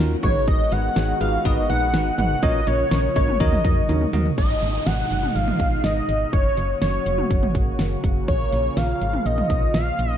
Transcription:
Already playing: analog synth pad D#3 F#3 A#3 C#4
0.00 fm bass D#2, tine electric piano D#4 F4 F#4 A#4
0.23 fm bass G#1, analog synth pad D#3 G#3 B3 F#4, tine electric piano D#4 F#4 G#4 B4, analog synth lead C#5, kick, closed hi-hat, mid tom
0.48 analog synth lead D#5, kick, closed hi-hat
0.72 fm bass G#1, tine electric piano D#4 F#4 G#4 B4, analog synth lead F#5, closed hi-hat
0.96 fm bass G#1, tine electric piano D#4 F#4 G#4 C#5, snare, closed hi-hat
1.21 fm bass G#1, tine electric piano D#4 F#4 G#4 B4, analog synth lead F5, closed hi-hat
1.45 fm bass G#1, tine electric piano D#4 F#4 G#4 B4, analog synth lead D#5, kick, closed hi-hat
1.70 fm bass A#1, tine electric piano D#4 F#4 G#4 B4, analog synth lead F#5, closed hi-hat
1.94 fm bass G#1, tine electric piano D#4 F#4 G#4 B4, snare, closed hi-hat
2.18 fm bass G#1, tine electric piano D#4 F#4 G#4 B4, analog synth lead F#5, closed hi-hat, mid tom
2.43 fm bass A#1, analog synth pad C#3 F3 A#3 F4, tine electric piano C#4 F4 A#4 C#5, analog synth lead D#5, kick, closed hi-hat
2.67 fm bass A#1, tine electric piano C#4 F4 A#4 C#5, analog synth lead C#5, closed hi-hat, cowbell
2.91 fm bass A#1, tine electric piano C#4 F4 A#4 C#5, snare, closed hi-hat
3.16 fm bass G#1, tine electric piano C#4 F4 A#4 C#5, analog synth lead C#5, kick, closed hi-hat, cowbell
3.28 mid tom
3.40 fm bass D#2, analog synth pad F#3 D#4, tine electric piano D#4 F#4 A#4 C#5, analog synth lead D#5, kick, closed hi-hat
3.52 mid tom
3.65 fm bass F2, tine electric piano D#4 F#4 A#4 D#5, kick, closed hi-hat
3.89 fm bass D#2, tine electric piano D#4 F#4 A#4 C#5, closed hi-hat, high tom
4.01 mid tom
4.13 fm bass D#2, tine electric piano D#4 F#4 A#4 D#5, closed hi-hat, mid tom
4.26 floor tom
4.38 fm bass G#1, analog synth pad B2 D#3 G#3 D#4, analog synth lead D#5, kick, closed hi-hat, downlifter
4.62 fm bass G#1, closed hi-hat
4.87 fm bass G#1, analog synth lead F#5, snare, closed hi-hat
5.11 fm bass F#1, closed hi-hat
5.23 mid tom
5.35 fm bass G#1, analog synth lead F5, closed hi-hat
5.48 mid tom
5.60 fm bass A#1, kick, closed hi-hat
5.84 fm bass G#1, analog synth lead D#5, snare, closed hi-hat
6.09 fm bass G#1, closed hi-hat
6.33 fm bass F#1, analog synth pad C#3 F#3 A#3 F#4, analog synth lead C#5, kick, closed hi-hat
6.57 fm bass F#1, closed hi-hat
6.82 fm bass F#1, analog synth lead C#5, snare, closed hi-hat
7.06 fm bass F1, closed hi-hat
7.18 mid tom
7.31 fm bass F#1, kick, closed hi-hat
7.43 mid tom
7.55 fm bass G#1, kick, closed hi-hat
7.79 fm bass F#1, snare, closed hi-hat
8.04 fm bass F#1, kick, closed hi-hat
8.28 fm bass A#1, analog synth pad F3 F4, analog synth lead C#5, kick, closed hi-hat
8.52 fm bass A#1, closed hi-hat
8.77 fm bass A#1, analog synth lead F5, snare, closed hi-hat
9.01 fm bass G#1, closed hi-hat
9.13 mid tom
9.26 fm bass A#1, analog synth lead D#5, closed hi-hat
9.38 mid tom
9.50 fm bass B1, kick, closed hi-hat
9.74 fm bass A#1, analog synth lead F5, snare, closed hi-hat
9.99 fm bass A#1, closed hi-hat
10.12 analog synth lead D#5

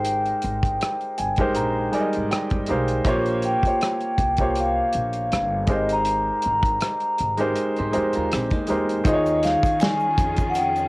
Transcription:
Already playing: upright bass G#1, upright piano G#3 D#4 G4 A#4 C5, vibraphone G5
0.05 closed hi-hat
0.26 closed hi-hat
0.42 upright bass G#1, closed hi-hat
0.63 kick, closed hi-hat
0.81 cross-stick, closed hi-hat
1.01 closed hi-hat
1.18 upright bass G1, upright piano G#5, closed hi-hat
1.36 upright piano G#3 D#4 G4 A#4, kick, closed hi-hat
1.41 upright piano C5
1.55 upright bass A#1, upright piano A#5, closed hi-hat
1.91 upright piano G3 G#3 D#4 A#4 D5 G#5, closed hi-hat
2.00 upright piano D#5
2.13 upright bass G#1, closed hi-hat
2.31 upright piano G5, cross-stick, closed hi-hat
2.50 upright bass G1, kick, closed hi-hat
2.66 upright piano G#3 D#4 G4 A#4 F5, closed hi-hat
2.71 upright bass B1, upright piano C5
2.88 closed hi-hat
3.05 upright bass A#1, upright piano A#3 F4 G4 C5 C#5, kick, closed hi-hat
3.26 closed hi-hat
3.42 vibraphone G5, closed hi-hat
3.63 upright piano A#3 F4 G4 C5, muted upright bass stroke, kick, closed hi-hat
3.67 upright piano C#5
3.81 cross-stick, closed hi-hat
4.00 closed hi-hat
4.18 upright bass C2, kick, closed hi-hat
4.37 upright piano A#3 F4 G4 C5, kick, closed hi-hat
4.41 upright piano C#5
4.50 vibraphone G5
4.55 closed hi-hat
4.60 vibraphone F5
4.93 upright bass A#1, closed hi-hat
5.13 closed hi-hat
5.32 upright bass G1, cross-stick, closed hi-hat
5.66 upright bass G#1, upright piano G#3 D#4 G4 A#4 C5, kick, closed hi-hat
5.73 vibraphone D#5
5.89 vibraphone A#5, closed hi-hat
6.05 closed hi-hat
6.42 upright bass G#1, closed hi-hat
6.63 kick, closed hi-hat
6.81 cross-stick, closed hi-hat
7.00 closed hi-hat
7.18 upright bass G#1, closed hi-hat
7.37 upright piano G#3 D#4 G4 A#4 C5, closed hi-hat
7.56 closed hi-hat
7.76 upright bass G#2, clean electric guitar G4 C5, closed hi-hat
7.91 upright piano G#3 D#4 G4 A#4 C5, closed hi-hat
7.96 upright bass F2
8.13 upright bass D#2, clean electric guitar F4 A#4, closed hi-hat
8.32 upright bass A#1, clean electric guitar C4 G4, cross-stick, closed hi-hat
8.51 clean electric guitar A#3 D#4, kick, closed hi-hat
8.67 upright bass E2, upright piano G#3 D#4 G4 A#4 C5, closed hi-hat
8.90 closed hi-hat
9.04 upright bass D#2, upright piano D#3 D#4 F4 G#4 C5, string section D#3 C#4 F4 G#4, vibraphone D#5, kick, closed hi-hat, shaker
9.14 upright piano C#5
9.26 closed hi-hat, shaker
9.43 vibraphone F5, snare, closed hi-hat, shaker
9.63 vibraphone F5, muted upright bass stroke, kick, closed hi-hat, shaker
9.80 vibraphone G#5, finger snap, snare, closed hi-hat, shaker
10.00 shaker
10.18 upright bass F2, kick, closed hi-hat, shaker
10.37 kick, closed hi-hat, shaker
10.50 vibraphone F#5
10.55 vibraphone G5, closed hi-hat, shaker
10.76 closed hi-hat, shaker

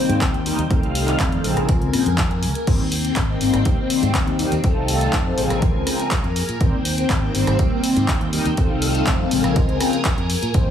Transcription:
Already playing: analog polysynth D#3 G3 A#3 C4, string machine C4 G5
0.09 fingered electric bass G#2, closed hi-hat
0.21 kick, cross-stick, clap, closed hi-hat
0.34 fingered electric bass D#2, closed hi-hat
0.46 analog polysynth D#3 G3 A#3 D#4, open hi-hat
0.58 fingered electric bass D#2, closed hi-hat
0.70 fingered electric bass F2, analog polysynth D#3 G3 A3 C4, string machine D#4 A4 F5, kick, closed hi-hat
0.83 fingered electric bass C2, closed hi-hat
0.95 open hi-hat
1.08 clap, closed hi-hat
1.20 fingered electric bass F2, kick, clap, closed hi-hat
1.32 analog polysynth D#3 G3 A3 C4, closed hi-hat
1.44 fingered electric bass A#1, analog polysynth C#3 F3 G#3 C4, string machine A#4 G#5, open hi-hat
1.57 fingered electric bass A#1, cross-stick, closed hi-hat
1.69 kick, closed hi-hat
1.81 fingered electric bass C#2, closed hi-hat
1.93 fingered electric bass A#2, analog polysynth C#3 F3 G#3 C4, cross-stick, open hi-hat
2.06 fingered electric bass F2, closed hi-hat
2.18 kick, clap, closed hi-hat
2.31 closed hi-hat
2.43 fingered electric bass C#2, open hi-hat
2.55 closed hi-hat
2.67 fingered electric bass G#1, analog polysynth D#3 G3 A#3 C4, string machine C4 G5, kick, closed hi-hat, crash, tambourine
2.80 fingered electric bass D#2
2.92 open hi-hat, tambourine
3.04 closed hi-hat, tambourine
3.16 fingered electric bass G#1, kick, clap, closed hi-hat, tambourine
3.29 analog polysynth D#3 G3 A#3 D#4
3.41 fingered electric bass G#1, analog polysynth D#3 G3 A#3 C4, open hi-hat, tambourine
3.54 fingered electric bass G#1, cross-stick, closed hi-hat, tambourine
3.65 analog polysynth D#3 G3 A#3 C4, kick, closed hi-hat, tambourine
3.90 open hi-hat, tambourine
4.03 fingered electric bass G#2, closed hi-hat, tambourine
4.15 kick, cross-stick, clap, closed hi-hat, tambourine
4.27 fingered electric bass D#2, closed hi-hat
4.39 analog polysynth D#3 G3 A#3 D#4, open hi-hat, tambourine
4.52 fingered electric bass D#2, closed hi-hat, tambourine
4.63 fingered electric bass F2, analog polysynth D#3 G3 A3 C4, string machine D#4 A4 F5, kick, closed hi-hat, tambourine
4.76 fingered electric bass C2
4.88 open hi-hat, tambourine
5.01 closed hi-hat, tambourine
5.13 fingered electric bass F2, kick, clap, closed hi-hat
5.25 analog polysynth D#3 G3 A3 C4
5.37 fingered electric bass A#1, analog polysynth C#3 F3 G#3 C4, string machine A#4 G#5, open hi-hat, tambourine
5.50 fingered electric bass A#1, cross-stick, closed hi-hat, tambourine
5.62 kick, closed hi-hat, tambourine
5.75 fingered electric bass C#2
5.86 analog polysynth C#3 F3 G#3 C4, cross-stick, open hi-hat, tambourine
6.00 closed hi-hat, tambourine
6.11 kick, clap, closed hi-hat, tambourine
6.24 fingered electric bass F2, closed hi-hat
6.36 open hi-hat, tambourine
6.49 fingered electric bass A#2, closed hi-hat, tambourine
6.60 fingered electric bass G#1, analog polysynth D#3 G3 A#3 C4, string machine C4 G5, kick, closed hi-hat, tambourine
6.73 fingered electric bass D#2
6.85 open hi-hat, tambourine
6.98 closed hi-hat, tambourine
7.10 fingered electric bass G#1, kick, clap, closed hi-hat, tambourine
7.22 analog polysynth D#3 G3 A#3 D#4
7.34 fingered electric bass G#1, analog polysynth D#3 G3 A#3 C4, open hi-hat, tambourine
7.47 fingered electric bass G#1, cross-stick, closed hi-hat, tambourine
7.58 analog polysynth D#3 G3 A#3 C4, kick, closed hi-hat, tambourine
7.84 open hi-hat, tambourine
7.96 fingered electric bass G#2, closed hi-hat, tambourine
8.08 kick, cross-stick, clap, closed hi-hat, tambourine
8.21 fingered electric bass D#2, closed hi-hat
8.32 analog polysynth D#3 G3 A#3 D#4, open hi-hat, tambourine
8.46 fingered electric bass D#2, closed hi-hat, tambourine
8.57 fingered electric bass F2, analog polysynth D#3 G3 A3 C4, string machine D#4 A4 F5, kick, closed hi-hat, tambourine
8.70 fingered electric bass C2
8.82 open hi-hat, tambourine
8.95 closed hi-hat, tambourine
9.06 fingered electric bass F2, kick, clap, closed hi-hat
9.19 analog polysynth D#3 G3 A3 C4
9.31 fingered electric bass A#1, analog polysynth C#3 F3 G#3 C4, string machine A#4 G#5, open hi-hat, tambourine
9.44 fingered electric bass A#1, cross-stick, closed hi-hat, tambourine
9.56 kick, closed hi-hat, tambourine
9.69 fingered electric bass C#2, closed hi-hat
9.80 analog polysynth C#3 F3 G#3 C4, cross-stick, open hi-hat, tambourine
9.93 closed hi-hat, tambourine
10.05 kick, clap, closed hi-hat, tambourine
10.18 fingered electric bass F2, closed hi-hat
10.30 open hi-hat, tambourine
10.42 fingered electric bass A#2, closed hi-hat, tambourine
10.54 fingered electric bass G#1, analog polysynth D#3 G3 A#3 C4, string machine C4 G5, kick, closed hi-hat, tambourine
10.67 fingered electric bass D#2

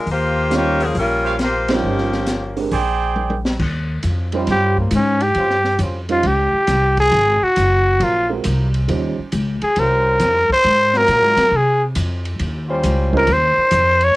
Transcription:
0.06 upright bass D#2, open hi-hat
0.11 saxophone section A#3 F4 G4 C5
0.50 grand piano G3 C#4 D#4 F4 C5, snare, closed hi-hat
0.55 saxophone section A#3 F4 G4 C#5
0.80 saxophone section F3 A#3 C#4 G#4, open hi-hat
0.95 upright bass A#1, saxophone section F4, open hi-hat
0.99 saxophone section G3 C#4 A#4
1.25 trumpet section G4 C5 C#5 F5
1.39 saxophone section A#3 F4 G4 C5, snare, closed hi-hat
1.68 grand piano G3 C#4 D#4 F4 C5, saxophone section C#4, snare, ride
1.72 saxophone section F3 A#3 G4
1.84 upright bass G1
1.98 snare
2.12 snare
2.27 snare, closed hi-hat
2.57 grand piano G#3 C4 D4 G4 A#4, open hi-hat
2.71 upright bass A#1, trumpet section G#4 C5 D5 G5, open hi-hat
3.16 high tom
3.30 high tom
3.45 snare
3.59 upright bass D#2, kick, crash
4.03 upright bass F2, hi-hat pedal, ride
4.32 grand piano G3 C#4 D#4 F4 C5, trombone section G3 C#4 F4 C5, ride
4.47 upright bass G2, snare, ride
4.51 trumpet G4
4.77 trumpet A#3, kick
4.91 upright bass G#2, hi-hat pedal, ride
4.95 trumpet C#4
5.20 trumpet G4, ride
5.35 upright bass G2, trombone section G3 C#4 F4 C5, ride
5.50 snare
5.64 snare
5.79 upright bass F2, trombone section G3 C#4 F4 C5, hi-hat pedal, ride
6.09 grand piano G3 C#4 D#4 F4 C5, trumpet F4, ride
6.23 upright bass C#2, trumpet G4, ride
6.53 muted upright bass stroke
6.67 upright bass C2, snare, hi-hat pedal, ride
6.97 trumpet G#4, kick, ride
7.12 upright bass G#1, ride
7.42 trumpet F#4, muted upright bass stroke
7.56 upright bass F#1, hi-hat pedal, ride
8.00 upright bass A#1, trombone section F#3 C4 F4 A#4, trumpet F4, ride
8.29 grand piano G#3 C4 F4 F#4 A#4
8.44 upright bass C2, hi-hat pedal, ride
8.74 ride
8.88 upright bass D#2, grand piano G3 C#4 D#4 F4 C5, ride
9.19 muted upright bass stroke
9.32 upright bass C#2, hi-hat pedal, ride
9.62 trumpet G#4, muted upright bass stroke, ride
9.76 upright bass C2, trombone section G3 C#4 F4 C5, trumpet A#4, ride
10.20 upright bass F2, snare, hi-hat pedal, ride
10.49 trumpet C5, muted upright bass stroke, kick
10.64 upright bass G#2, ride
10.93 trombone section F#3 C4 F4 A#4, trumpet A#4, snare
11.08 upright bass A#2, hi-hat pedal, ride
11.22 upright bass G#2
11.37 upright bass F#2, snare, ride
11.51 upright bass C3
11.56 trumpet G#4
11.95 upright bass F2, hi-hat pedal, ride
12.25 ride
12.39 upright bass D#2, ride
12.68 trombone section G3 C#4 F4 C5
12.83 upright bass C#2, hi-hat pedal, ride
13.12 grand piano G3 C#4 D#4 F4 C5, kick
13.17 trumpet A#4
13.27 upright bass D#2, ride
13.33 trumpet C5
13.57 muted upright bass stroke
13.71 upright bass F2, hi-hat pedal, ride
14.01 trumpet C#5, ride

